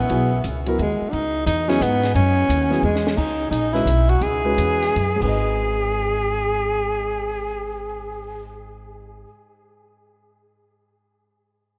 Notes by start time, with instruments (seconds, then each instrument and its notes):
Already playing: tenor saxophone B3
0.10 upright bass B1, grand piano F#3 B3 E4 G#4, ride
0.44 upright bass C#2, hi-hat pedal, ride
0.66 grand piano F#3 B3 E4 A#4, ride
0.78 upright bass D#2, tenor saxophone G#3, ride
1.01 muted upright bass stroke
1.09 upright bass C#2, tenor saxophone D4 D#4
1.13 ride
1.46 upright bass E2, tenor saxophone D#4, hi-hat pedal, ride
1.68 grand piano F#3 B3 E4 G#4, tenor saxophone C#4, snare, ride
1.81 upright bass G#2, tenor saxophone B3, hi-hat pedal, ride
2.03 snare, ride
2.15 upright bass F#2, tenor saxophone C#4, ride
2.49 upright bass D#2, hi-hat pedal, ride
2.70 grand piano F#3 B3 E4 G#4, snare
2.83 upright bass E2, tenor saxophone G#3
2.95 snare
3.07 snare
3.17 upright bass C#2, tenor saxophone D#4, kick, crash
3.51 upright bass A#1, tenor saxophone D#4, hi-hat pedal, ride
3.73 grand piano G#3 C#4 F#4 B4, tenor saxophone E4, snare
3.86 upright bass B1, hi-hat pedal, ride
4.09 tenor saxophone F#4, ride
4.21 upright bass C#2, tenor saxophone G#4, ride
4.44 grand piano G#3 C#4 F#4 B4
4.58 upright bass E2, hi-hat pedal, ride
4.82 snare, ride
4.96 upright bass F#2, ride
5.16 grand piano G#2 G#3
5.21 upright bass G#1, grand piano D#4 B4, tenor saxophone G#4, kick, crash
5.28 grand piano D#5